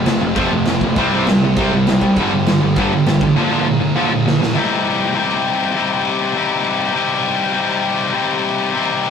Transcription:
Already playing: F2 C3 F3
0.06 F1 F2 C3 F3 A3, snare, crash
0.21 F1 F2 C3 F3 A3
0.34 F1 F2 C3 F3 A3 C4, kick, crash
0.51 F1 F2 C3 F3 A3
0.65 F1 F2 C3 F3 A3, snare, crash
0.81 A#1 F2 C3 F3 A3, kick
0.96 C2 C3 G3 C4, kick, crash
1.13 C2 C3 G3 C4
1.27 C2 C3 G3, snare, crash
1.44 C2 C3 G3
1.56 C2 C3 G3, kick, crash
1.61 C4
1.73 C2 C3 G3
1.87 C2 C3 G3, snare, crash
2.01 C2 C3 G3, kick
2.17 G1 G2 D3 G3, kick, crash
2.31 G1 G2 D3
2.46 G1 G2 D3, snare, crash
2.62 G1 G2 D3
2.76 G1 G2 D3 G3, kick, crash
2.91 G1 G2 D3
3.06 G1 G2 D3, snare, crash
3.21 A1 G2 D3, kick
3.36 A#2 D3 F3 A#3
3.51 A#2 D3 F3
3.65 A#2 D3
3.80 A#2 D3
3.95 A#2 D3 F3 A#3
4.11 A#2 D3
4.25 A#2 D3, snare
4.39 A#2 D3, snare
4.54 C3 G3 C4 D#4 G4
5.15 C3 G3 C4 D#4
5.19 G4
5.75 C3 G3 C4 D#4 G4
6.33 C3 G3 C4 D#4
6.38 G4
6.93 C3 G3 C4 D#4 G4
7.53 C3 G3 C4 D#4 G4
8.13 C3 G3 C4 D#4 G4
8.73 C3 G3 C4 D#4 G4

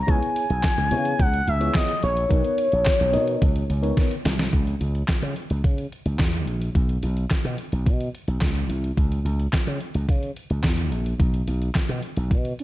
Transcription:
0.03 A#5
0.07 C#2 B3 E4 G#4 C#5 G#5, kick, closed hi-hat
0.22 closed hi-hat
0.36 closed hi-hat
0.50 B1, closed hi-hat
0.63 kick, snare, clap, closed hi-hat
0.78 C#2, closed hi-hat
0.91 C#3 B3 E4 G#4 C#5, closed hi-hat
1.05 closed hi-hat
1.19 C#2 F#5, kick, closed hi-hat
1.33 closed hi-hat
1.47 C#2 E5, closed hi-hat
1.60 B3 E4 G#4 C#5, closed hi-hat
1.74 D#5, kick, snare, clap, closed hi-hat
1.88 closed hi-hat
2.03 A#1 C#5, closed hi-hat
2.17 closed hi-hat
2.29 B1 B3 D#4 A#4 C#5, kick, closed hi-hat
2.44 closed hi-hat
2.58 closed hi-hat
2.72 A#1, closed hi-hat
2.85 kick, snare, clap, closed hi-hat
3.00 B1, closed hi-hat
3.12 B2 B3 D#4 A#4 D#5, closed hi-hat
3.27 closed hi-hat
3.42 C#2, kick, closed hi-hat
3.56 closed hi-hat
3.70 C#2, closed hi-hat
3.82 B3 D#4 A#4 C#5, closed hi-hat
3.97 kick, snare, closed hi-hat
4.11 closed hi-hat
4.25 C2, snare, open hi-hat
4.39 snare, closed hi-hat
4.53 C#2, kick, closed hi-hat
4.67 closed hi-hat
4.81 C#2, closed hi-hat
4.95 closed hi-hat
5.08 muted slap bass stroke, kick, snare, clap, closed hi-hat
5.22 C#3, closed hi-hat
5.36 closed hi-hat
5.50 C#2, closed hi-hat
5.64 C#3, kick, closed hi-hat
5.78 closed hi-hat
5.92 closed hi-hat
6.05 C#2, closed hi-hat
6.19 E2, kick, snare, clap, closed hi-hat
6.33 closed hi-hat
6.47 A#1, closed hi-hat
6.62 closed hi-hat
6.75 B1, kick, closed hi-hat
6.89 closed hi-hat
7.03 B1, closed hi-hat
7.17 closed hi-hat
7.30 kick, snare, clap, closed hi-hat
7.45 B2, closed hi-hat
7.58 closed hi-hat
7.72 B1, closed hi-hat
7.86 B2, kick, closed hi-hat
8.00 closed hi-hat
8.15 closed hi-hat
8.28 B1, closed hi-hat
8.41 C#2, kick, snare, clap, closed hi-hat
8.55 closed hi-hat
8.69 C2, closed hi-hat
8.84 closed hi-hat
8.97 C#2, kick, closed hi-hat
9.12 closed hi-hat
9.25 C#2, closed hi-hat
9.39 closed hi-hat
9.53 muted slap bass stroke, kick, snare, clap, closed hi-hat
9.67 C#3, closed hi-hat
9.80 closed hi-hat
9.94 C#2, closed hi-hat
10.09 C#3, kick, closed hi-hat
10.23 closed hi-hat
10.36 closed hi-hat
10.50 C#2, closed hi-hat
10.63 E2, kick, snare, clap, closed hi-hat
10.78 closed hi-hat
10.92 A#1, closed hi-hat
11.06 closed hi-hat
11.20 B1, kick, closed hi-hat
11.34 closed hi-hat
11.47 B1, closed hi-hat
11.62 closed hi-hat
11.75 muted slap bass stroke, kick, snare, clap, closed hi-hat
11.89 B2, closed hi-hat
12.03 closed hi-hat
12.17 B1, closed hi-hat
12.31 B2, kick, closed hi-hat
12.45 closed hi-hat
12.59 C#4, closed hi-hat

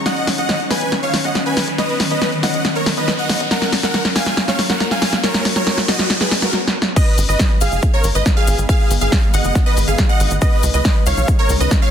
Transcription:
Already playing: D#3 C#4, riser
0.06 B3 D#5 F#5, snare, closed hi-hat
0.17 closed hi-hat
0.27 B1, snare, open hi-hat
0.38 B1 D#5 F#5, closed hi-hat
0.49 snare, closed hi-hat
0.60 closed hi-hat
0.70 B1 B4 G#5, snare, open hi-hat
0.81 F#1, closed hi-hat
0.92 snare, closed hi-hat
1.03 C#5 F5, closed hi-hat
1.14 B1, snare, open hi-hat
1.24 B1 D#5 F#5, closed hi-hat
1.35 snare, closed hi-hat
1.46 B4 G#5, closed hi-hat
1.57 B1, snare, open hi-hat
1.68 B1, closed hi-hat
1.78 B4 D#5, snare, closed hi-hat
1.89 closed hi-hat
2.00 B1, snare, open hi-hat
2.11 B1 B4 D#5, closed hi-hat
2.22 snare, closed hi-hat
2.32 closed hi-hat
2.43 B1 D#5 F#5, snare, open hi-hat
2.54 F#1, closed hi-hat
2.65 snare, closed hi-hat
2.76 A#4 C#5, closed hi-hat
2.86 B1, snare, open hi-hat
2.97 B1 B4 D#5, closed hi-hat
3.08 snare, closed hi-hat
3.19 D#5 F#5, closed hi-hat
3.29 B1, snare, open hi-hat
3.40 B1, closed hi-hat
3.51 F#3 A#3 A#4 F#5, snare, closed hi-hat
3.62 snare, closed hi-hat
3.72 F#1, snare, open hi-hat
3.83 F#1 A#4 F#5, snare, closed hi-hat
3.94 snare, closed hi-hat
4.05 snare, closed hi-hat
4.16 F#1 F5 G#5, snare, open hi-hat
4.26 C#2, snare, closed hi-hat
4.37 snare, closed hi-hat
4.48 C#5 F5, snare, closed hi-hat
4.59 F#1, snare, open hi-hat
4.69 F#1 A#4 F#5, snare, closed hi-hat
4.80 snare, closed hi-hat
4.91 F5 G#5, snare, closed hi-hat
5.02 F#1, snare, open hi-hat
5.13 F#1, snare, closed hi-hat
5.23 A#4 C#5, snare, closed hi-hat
5.34 snare, closed hi-hat
5.45 F#1, snare, open hi-hat
5.56 F#1 A#4 C#5, snare, closed hi-hat
5.67 snare, closed hi-hat
5.78 snare, closed hi-hat
5.88 F#1 F#4 D#5, snare, open hi-hat
5.99 C#2, snare, closed hi-hat
6.10 snare, closed hi-hat
6.21 G#4 B4, snare, closed hi-hat
6.31 C#2, snare, open hi-hat
6.42 F#1 F#4 A#4, snare, closed hi-hat
6.53 snare
6.67 snare
6.82 snare
6.96 D#3 G#3 B3 B4 D#5, kick, closed hi-hat, crash, cabasa
7.07 closed hi-hat
7.18 G#1, open hi-hat, cabasa
7.29 G#1 B4 D#5, closed hi-hat, cabasa
7.39 kick, snare, closed hi-hat, cabasa
7.50 closed hi-hat
7.61 G#1 G#4 F5, open hi-hat, cabasa
7.72 F#1, closed hi-hat, cabasa
7.82 kick, closed hi-hat, cabasa
7.94 A#4 C#5, closed hi-hat
8.04 G#1, open hi-hat, cabasa
8.15 G#1 B4 D#5, closed hi-hat, cabasa
8.26 kick, snare, closed hi-hat, cabasa
8.37 G#4 F5, closed hi-hat
8.47 G#1, open hi-hat, cabasa
8.58 G#1, closed hi-hat, cabasa
8.69 G#4 F5, kick, closed hi-hat, cabasa
8.80 closed hi-hat
8.91 G#1, open hi-hat, cabasa
9.01 G#1 G#4 F5, closed hi-hat, cabasa
9.12 kick, snare, closed hi-hat, cabasa
9.23 closed hi-hat
9.34 G#1 D#5 F#5, open hi-hat, cabasa
9.44 F#1, closed hi-hat, cabasa
9.55 kick, snare, closed hi-hat, cabasa
9.66 B4 D#5, closed hi-hat
9.77 G#1, open hi-hat, cabasa
9.88 G#1 G#4 F5, closed hi-hat, cabasa
9.98 kick, snare, closed hi-hat, cabasa
10.09 D#5 F#5, closed hi-hat
10.20 G#1, open hi-hat, cabasa
10.31 G#1, closed hi-hat, cabasa
10.41 G#3 C#4 B4 D#5, kick, closed hi-hat, cabasa
10.52 closed hi-hat
10.63 C#2, open hi-hat, cabasa
10.74 C#2 B4 D#5, closed hi-hat, cabasa
10.85 kick, snare, closed hi-hat, cabasa
10.96 closed hi-hat
11.06 C#2 C#5 F5, open hi-hat, cabasa
11.17 B1, closed hi-hat, cabasa
11.28 kick, closed hi-hat, cabasa
11.39 A#4 C#5, closed hi-hat
11.49 C#2, open hi-hat, cabasa
11.60 C#2 B4 D#5, closed hi-hat, cabasa
11.71 kick, snare, closed hi-hat, cabasa
11.82 C#5 F5, closed hi-hat

